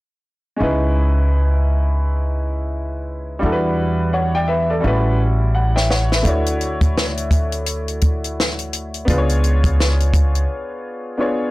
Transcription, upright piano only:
0.56 3.37 G#3 medium
0.56 3.38 C#4 medium
0.56 3.39 D#4 medium
0.61 3.39 E4 medium
0.61 3.40 B4 medium
3.39 4.79 G3 medium
3.39 4.80 D4 medium
3.39 4.81 E4 medium
3.44 4.82 F#4 medium
3.44 3.52 A4 medium
3.52 4.17 B4 medium
4.13 4.34 C#5 soft
4.13 4.34 F#5 medium
4.35 4.48 D5 medium
4.35 4.48 G5 medium
4.48 4.69 B4 medium
4.48 4.69 E5 medium
4.70 5.04 A4 soft
4.70 5.04 D5 soft
4.80 6.21 G3 medium
4.80 6.21 C#4 medium
4.80 6.22 E4 medium
4.85 6.23 F#4 medium
4.85 5.20 B4 medium
5.55 5.75 F#5 medium
5.76 5.89 C#5 soft
5.76 5.89 E5 medium
5.76 5.89 G5 medium
5.90 6.11 C#5 medium
5.90 6.10 F#5 medium
6.12 6.45 B4 soft
6.12 6.45 E5 medium
6.23 9.02 A3 medium
6.23 9.03 D4 medium
6.23 9.04 E4 medium
6.28 9.05 F#4 medium
6.28 9.05 C#5 medium
9.05 11.14 B3 medium
9.05 11.15 D4 medium
9.05 11.16 F4 medium
9.10 11.17 G#4 medium
9.10 9.17 B4 medium
9.18 11.19 C#5 medium
11.18 11.51 B3 medium
11.18 11.51 D4 soft
11.18 11.51 F4 soft
11.18 11.51 G#4 soft
11.18 11.51 C#5 medium

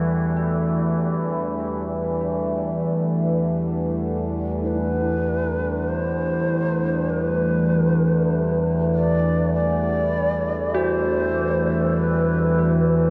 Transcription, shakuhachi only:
4.64 5.90 B4 medium
4.64 4.69 C5 medium
5.88 7.11 C5 medium
7.10 8.66 B4 medium
8.94 9.51 D5 medium
9.54 10.78 D5 loud
10.77 12.00 C5 medium
11.99 12.94 B4 medium

